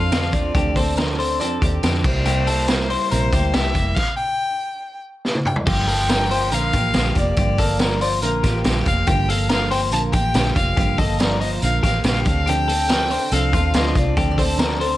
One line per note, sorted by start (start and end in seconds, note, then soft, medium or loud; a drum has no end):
0.00 0.33 F2 medium
0.00 0.11 C4 soft
0.00 0.11 D4 medium
0.00 0.11 F4 medium
0.00 0.11 A4 medium
0.00 0.34 F5 loud
0.11 0.33 D3 medium
0.11 0.33 F3 medium
0.11 0.33 C4 medium
0.11 0.33 D4 medium
0.11 0.52 F4 medium
0.11 0.33 A4 medium
0.11 snare loud
0.11 hi-hat pedal medium
0.11 open hi-hat medium
0.11 tambourine medium
0.33 0.51 D#2 medium
0.33 0.55 C4 soft
0.33 0.55 D4 medium
0.33 0.55 A4 medium
0.33 1.19 D5 medium
0.33 kick medium
0.33 hi-hat pedal medium
0.33 open hi-hat medium
0.33 tambourine soft
0.55 1.40 D2 loud
0.55 0.76 D3 medium
0.55 0.77 F3 medium
0.55 0.77 C4 medium
0.55 0.76 D4 medium
0.55 0.76 G4 loud
0.55 0.75 A4 medium
0.55 kick loud
0.55 hi-hat pedal medium
0.55 open hi-hat medium
0.55 tambourine soft
0.76 0.97 C4 soft
0.76 0.98 D4 medium
0.76 0.97 A4 medium
0.76 1.16 C5 medium
0.76 kick medium
0.76 hi-hat pedal medium
0.76 open hi-hat medium
0.76 tambourine medium
0.97 1.19 D3 medium
0.97 1.19 F3 medium
0.97 1.19 C4 medium
0.97 1.19 D4 loud
0.97 1.18 A4 loud
0.97 1.18 A#4 medium
0.97 snare loud
0.97 hi-hat pedal medium
0.97 open hi-hat loud
0.97 tambourine medium
1.19 1.41 C4 medium
1.19 1.41 D4 medium
1.19 1.41 A4 medium
1.19 1.40 A4 medium
1.19 1.40 C5 medium
1.19 hi-hat pedal medium
1.19 open hi-hat medium
1.40 1.58 F2 loud
1.40 1.62 F3 medium
1.40 1.62 C4 medium
1.40 1.63 D4 medium
1.40 1.62 A4 medium
1.40 1.90 D5 loud
1.40 hi-hat pedal medium
1.40 open hi-hat medium
1.40 tambourine medium
1.62 1.80 D#2 loud
1.62 1.82 C4 soft
1.62 1.83 D4 medium
1.62 1.82 G4 medium
1.62 1.83 A4 medium
1.62 kick medium
1.62 hi-hat pedal medium
1.62 open hi-hat medium
1.62 tambourine medium
1.83 2.01 F2 medium
1.83 2.04 D3 loud
1.83 2.04 F3 medium
1.83 2.05 C4 loud
1.83 2.04 D4 loud
1.83 2.23 G4 medium
1.83 2.05 A4 loud
1.83 snare loud
1.83 hi-hat pedal medium
1.83 open hi-hat medium
1.83 tambourine medium
2.04 2.95 C2 loud
2.04 2.25 G3 soft
2.04 2.25 A#3 medium
2.04 2.26 E4 medium
2.04 3.07 C5 loud
2.04 kick loud
2.04 tambourine medium
2.04 crash medium
2.25 2.47 C3 medium
2.25 2.47 G3 medium
2.25 2.46 A#3 medium
2.25 2.45 E4 medium
2.25 2.47 G4 medium
2.25 hi-hat pedal medium
2.25 open hi-hat medium
2.47 2.68 G3 medium
2.47 2.68 A#3 medium
2.47 2.68 E4 medium
2.47 2.68 A4 medium
2.47 hi-hat pedal medium
2.47 open hi-hat medium
2.47 tambourine soft
2.68 2.90 C3 medium
2.68 2.90 G3 loud
2.68 2.90 A#3 loud
2.68 2.89 E4 loud
2.68 2.90 A#4 medium
2.68 snare loud
2.68 hi-hat pedal medium
2.68 open hi-hat loud
2.68 tambourine medium
2.90 3.11 G3 soft
2.90 3.12 A#3 medium
2.90 3.11 E4 medium
2.90 3.11 C5 medium
2.90 hi-hat pedal medium
2.90 open hi-hat medium
3.10 3.30 A#1 medium
3.10 3.33 C3 medium
3.10 3.33 G3 medium
3.10 3.32 A#3 medium
3.10 3.31 E4 medium
3.10 3.33 A#4 medium
3.10 3.55 C5 loud
3.10 hi-hat pedal medium
3.10 open hi-hat medium
3.10 tambourine medium
3.32 3.51 D2 loud
3.32 3.53 G3 soft
3.32 3.54 A#3 medium
3.32 3.54 E4 medium
3.32 3.53 G4 medium
3.32 kick loud
3.32 hi-hat pedal medium
3.32 open hi-hat medium
3.32 tambourine medium
3.53 3.72 C2 loud
3.53 3.75 C3 medium
3.53 3.76 G3 medium
3.53 3.75 A#3 medium
3.53 3.74 E4 medium
3.53 3.94 G4 medium
3.53 3.97 E5 loud
3.53 snare loud
3.53 hi-hat pedal medium
3.53 open hi-hat medium
3.53 tambourine medium
3.75 3.93 F1 loud
3.75 3.97 G3 soft
3.75 3.97 A#3 medium
3.75 3.97 E4 medium
3.75 kick medium
3.75 hi-hat pedal medium
3.75 open hi-hat medium
3.75 tambourine medium
3.95 4.16 F5 loud
3.95 kick loud
3.95 crash loud
4.17 4.99 G5 loud
5.25 snare medium
5.35 high tom medium
5.45 5.56 G5 medium
5.45 mid tom medium
5.56 floor tom loud
5.67 6.53 G1 loud
5.67 5.88 G2 medium
5.67 5.89 D3 medium
5.67 5.88 F3 medium
5.67 5.87 A#3 medium
5.67 5.86 F4 medium
5.67 5.88 G4 loud
5.67 6.56 G5 loud
5.67 kick loud
5.67 crash loud
5.87 6.08 F3 soft
5.87 6.08 A#3 medium
5.87 6.09 F4 medium
5.87 6.09 A4 medium
5.87 hi-hat pedal medium
5.87 open hi-hat medium
5.87 tambourine medium
6.09 6.31 G2 medium
6.09 6.31 D3 medium
6.09 6.31 F3 medium
6.09 6.30 A#3 medium
6.09 6.30 F4 medium
6.09 6.30 A#4 medium
6.09 snare loud
6.09 hi-hat pedal medium
6.09 open hi-hat medium
6.09 tambourine medium
6.30 6.51 F3 medium
6.30 6.52 A#3 medium
6.30 6.52 F4 medium
6.30 6.52 C5 medium
6.30 hi-hat pedal medium
6.30 open hi-hat medium
6.30 tambourine soft
6.51 6.71 A#1 medium
6.51 6.73 D3 medium
6.51 6.74 F3 medium
6.51 6.73 A#3 medium
6.51 6.73 F4 medium
6.51 6.74 A#4 medium
6.51 7.17 F5 loud
6.51 hi-hat pedal medium
6.51 open hi-hat medium
6.51 tambourine medium
6.73 6.92 A1 loud
6.73 6.93 F3 soft
6.73 6.94 A#3 medium
6.73 6.94 F4 medium
6.73 6.93 G4 medium
6.73 kick medium
6.73 hi-hat pedal medium
6.73 open hi-hat medium
6.73 tambourine medium
6.94 7.14 A#1 loud
6.94 7.16 G2 medium
6.94 7.16 D3 medium
6.94 7.16 F3 medium
6.94 7.15 A#3 medium
6.94 7.14 F4 medium
6.94 7.35 G4 medium
6.94 snare loud
6.94 hi-hat pedal medium
6.94 open hi-hat medium
6.94 tambourine loud
7.15 7.34 F1 medium
7.15 7.36 F3 soft
7.15 7.37 A#3 medium
7.15 7.37 F4 medium
7.15 kick medium
7.15 hi-hat pedal medium
7.15 open hi-hat medium
7.15 tambourine soft
7.19 7.99 D5 medium
7.37 8.23 G1 loud
7.37 7.58 G2 medium
7.37 7.59 D3 medium
7.37 7.59 F3 medium
7.37 7.58 A#3 medium
7.37 7.57 F4 medium
7.37 7.59 G4 loud
7.37 kick loud
7.37 hi-hat pedal medium
7.37 open hi-hat medium
7.58 7.79 F3 soft
7.58 7.79 A#3 medium
7.58 7.79 F4 medium
7.58 7.80 A4 medium
7.58 7.98 A#4 medium
7.58 kick medium
7.58 hi-hat pedal medium
7.58 open hi-hat medium
7.58 tambourine soft
7.79 8.01 G2 medium
7.79 8.01 D3 loud
7.79 8.01 F3 loud
7.79 8.00 A#3 medium
7.79 7.99 F4 loud
7.79 8.01 A#4 medium
7.79 snare loud
7.79 hi-hat pedal medium
7.79 open hi-hat medium
7.79 tambourine medium
8.01 8.22 F3 medium
8.01 8.23 A#3 medium
8.01 8.22 F4 medium
8.01 8.22 C5 medium
8.01 8.07 D5 loud
8.01 hi-hat pedal medium
8.01 open hi-hat medium
8.01 tambourine soft
8.22 8.41 A#1 loud
8.22 8.44 D3 medium
8.22 8.44 F3 medium
8.22 8.43 A#3 medium
8.22 8.43 F4 medium
8.22 8.44 A#4 medium
8.22 8.72 A#4 medium
8.22 hi-hat pedal medium
8.22 open hi-hat medium
8.22 tambourine medium
8.43 8.62 A1 loud
8.43 8.64 F3 soft
8.43 8.64 A#3 medium
8.43 8.65 F4 medium
8.43 8.64 G4 medium
8.43 kick medium
8.43 snare soft
8.43 hi-hat pedal medium
8.43 open hi-hat medium
8.43 tambourine medium
8.64 8.83 A#1 loud
8.64 8.86 G2 loud
8.64 8.86 D3 loud
8.64 8.86 F3 medium
8.64 8.86 A#3 loud
8.64 8.85 F4 loud
8.64 9.05 G4 medium
8.64 snare loud
8.64 hi-hat pedal medium
8.64 open hi-hat medium
8.64 tambourine loud
8.86 9.04 F1 medium
8.86 9.07 F3 soft
8.86 9.07 A#3 medium
8.86 9.07 F4 medium
8.86 9.09 F5 loud
8.86 kick medium
8.86 hi-hat pedal medium
8.86 open hi-hat medium
8.86 tambourine soft
9.07 9.92 G1 loud
9.07 9.29 G2 medium
9.07 9.29 D3 medium
9.07 9.29 F3 medium
9.07 9.28 A#3 medium
9.07 9.27 F4 loud
9.07 9.29 G4 loud
9.07 9.32 G5 loud
9.07 kick loud
9.07 hi-hat pedal medium
9.07 open hi-hat medium
9.07 tambourine soft
9.28 9.49 F3 medium
9.28 9.50 A#3 medium
9.28 9.50 F4 medium
9.28 9.49 A4 medium
9.28 9.50 F5 loud
9.28 hi-hat pedal medium
9.28 open hi-hat medium
9.28 tambourine medium
9.49 9.71 G2 medium
9.49 9.71 D3 medium
9.49 9.71 F3 medium
9.49 9.71 A#3 medium
9.49 9.70 F4 medium
9.49 9.70 A#4 medium
9.49 9.70 F5 loud
9.49 snare loud
9.49 hi-hat pedal medium
9.49 open hi-hat loud
9.49 tambourine medium
9.71 9.92 F3 soft
9.71 9.92 A#3 soft
9.71 9.92 F4 medium
9.71 9.92 C5 medium
9.71 9.81 G5 loud
9.71 hi-hat pedal medium
9.71 open hi-hat medium
9.71 tambourine soft
9.92 10.10 A#1 medium
9.92 10.13 D3 medium
9.92 10.14 F3 medium
9.92 10.13 A#3 medium
9.92 10.12 F4 medium
9.92 10.13 A#4 medium
9.92 10.02 A5 loud
9.92 hi-hat pedal medium
9.92 open hi-hat medium
9.92 tambourine medium
10.13 10.32 A1 loud
10.13 10.36 F3 soft
10.13 10.35 A#3 medium
10.13 10.35 F4 medium
10.13 10.34 G4 medium
10.13 10.53 G5 loud
10.13 kick loud
10.13 hi-hat pedal medium
10.13 open hi-hat medium
10.13 tambourine medium
10.34 10.53 A#1 loud
10.34 10.56 G2 medium
10.34 10.57 D3 medium
10.34 10.57 F3 medium
10.34 10.56 A#3 medium
10.34 10.55 F4 medium
10.34 10.75 G4 medium
10.34 snare loud
10.34 hi-hat pedal medium
10.34 open hi-hat medium
10.34 tambourine medium
10.55 10.74 F1 medium
10.55 10.78 F3 soft
10.55 10.78 A#3 medium
10.55 10.77 F4 medium
10.55 11.00 F5 loud
10.55 kick medium
10.55 hi-hat pedal medium
10.55 open hi-hat medium
10.55 tambourine medium
10.77 11.58 G1 loud
10.77 10.99 G2 medium
10.77 10.99 D3 medium
10.77 10.99 F3 medium
10.77 10.99 A#3 loud
10.77 10.99 F4 medium
10.77 10.98 G4 loud
10.77 kick loud
10.77 hi-hat pedal medium
10.77 open hi-hat medium
10.77 tambourine soft
10.98 11.20 F3 soft
10.98 11.21 A#3 medium
10.98 11.20 F4 medium
10.98 11.19 A4 medium
10.98 11.22 D#5 medium
10.98 kick medium
10.98 hi-hat pedal medium
10.98 open hi-hat medium
10.98 tambourine soft
11.19 11.42 G2 medium
11.19 11.42 D3 medium
11.19 11.42 F3 medium
11.19 11.41 A#3 medium
11.19 11.40 F4 medium
11.19 11.40 A#4 medium
11.19 11.40 D5 loud
11.19 snare loud
11.19 hi-hat pedal medium
11.19 open hi-hat loud
11.19 tambourine medium
11.40 11.62 F3 soft
11.40 11.63 A#3 medium
11.40 11.62 F4 medium
11.40 11.62 C5 medium
11.40 11.50 D#5 medium
11.40 hi-hat pedal medium
11.40 open hi-hat medium
11.62 11.80 A#1 medium
11.62 11.84 D3 medium
11.62 11.84 F3 medium
11.62 11.84 A#3 medium
11.62 11.83 F4 medium
11.62 11.83 A#4 medium
11.62 11.83 F5 loud
11.62 hi-hat pedal medium
11.62 open hi-hat medium
11.62 tambourine medium
11.83 12.01 A1 medium
11.83 12.04 F3 soft
11.83 12.04 A#3 soft
11.83 12.05 F4 medium
11.83 12.03 G4 medium
11.83 12.04 F5 medium
11.83 kick medium
11.83 snare soft
11.83 hi-hat pedal medium
11.83 open hi-hat medium
11.83 tambourine medium
12.04 12.23 A#1 loud
12.04 12.26 G2 medium
12.04 12.26 D3 medium
12.04 12.26 F3 medium
12.04 12.26 A#3 medium
12.04 12.26 F4 medium
12.04 12.45 G4 medium
12.04 12.25 F5 medium
12.04 snare loud
12.04 hi-hat pedal medium
12.04 open hi-hat medium
12.04 tambourine medium
12.25 13.16 D2 loud
12.25 12.48 C4 soft
12.25 12.48 D4 medium
12.25 12.47 A4 medium
12.25 12.50 F5 loud
12.25 kick loud
12.25 hi-hat pedal medium
12.25 open hi-hat medium
12.25 tambourine medium
12.46 12.69 D3 medium
12.46 12.69 F3 medium
12.46 12.69 C4 medium
12.46 12.69 D4 medium
12.46 12.68 G4 loud
12.46 12.68 A4 loud
12.46 13.35 G5 loud
12.46 hi-hat pedal medium
12.46 open hi-hat medium
12.46 tambourine soft
12.68 12.90 C4 soft
12.68 12.90 D4 medium
12.68 12.89 A4 medium
12.68 hi-hat pedal medium
12.68 open hi-hat medium
12.68 tambourine soft
12.89 13.11 D3 medium
12.89 13.11 F3 medium
12.89 13.12 C4 medium
12.89 13.12 D4 medium
12.89 13.11 A4 loud
12.89 13.10 A#4 medium
12.89 snare loud
12.89 hi-hat pedal medium
12.89 open hi-hat loud
12.89 tambourine medium
13.10 13.31 C4 soft
13.10 13.32 D4 medium
13.10 13.32 A4 medium
13.10 13.32 C5 medium
13.10 hi-hat pedal medium
13.10 open hi-hat medium
13.31 13.53 C2 loud
13.31 13.53 F3 medium
13.31 13.53 C4 medium
13.31 13.53 D4 medium
13.31 13.53 A4 medium
13.31 13.52 A4 medium
13.31 13.79 F5 loud
13.31 hi-hat pedal medium
13.31 open hi-hat medium
13.31 tambourine medium
13.53 13.71 D#2 medium
13.53 13.74 C4 soft
13.53 13.75 D4 medium
13.53 13.74 F4 medium
13.53 13.74 A4 medium
13.53 kick loud
13.53 hi-hat pedal medium
13.53 open hi-hat medium
13.53 tambourine medium
13.74 13.92 D2 loud
13.74 13.96 D3 medium
13.74 13.96 F3 medium
13.74 13.96 C4 medium
13.74 13.95 D4 medium
13.74 14.15 F4 medium
13.74 13.94 A4 medium
13.74 14.00 D#5 medium
13.74 snare loud
13.74 hi-hat pedal medium
13.74 open hi-hat medium
13.74 tambourine medium
13.95 14.14 C2 loud
13.95 14.16 C4 soft
13.95 14.16 D4 medium
13.95 14.82 D5 medium
13.95 kick medium
13.95 hi-hat pedal medium
13.95 open hi-hat medium
13.95 tambourine medium
14.17 14.97 D2 loud
14.17 14.38 D3 medium
14.17 14.38 F3 medium
14.17 14.38 C4 medium
14.17 14.37 D4 medium
14.17 14.38 G4 loud
14.17 14.36 A4 loud
14.17 kick loud
14.17 hi-hat pedal medium
14.17 open hi-hat medium
14.17 tambourine soft
14.31 14.38 D5 medium
14.37 14.57 C4 soft
14.37 14.58 D4 soft
14.37 14.58 A4 medium
14.37 14.59 A4 medium
14.37 14.78 C5 loud
14.37 kick medium
14.37 hi-hat pedal medium
14.37 open hi-hat medium
14.37 tambourine medium
14.58 14.80 D3 loud
14.58 14.80 F3 medium
14.58 14.80 C4 loud
14.58 14.80 D4 loud
14.58 14.79 A4 loud
14.58 14.80 A#4 medium
14.58 snare loud
14.58 hi-hat pedal medium
14.58 open hi-hat loud
14.58 tambourine medium
14.80 14.97 C4 medium
14.80 14.97 D4 medium
14.80 14.97 A4 medium
14.80 14.87 A4 medium
14.80 14.97 C5 medium
14.80 hi-hat pedal medium
14.80 open hi-hat medium
14.80 tambourine soft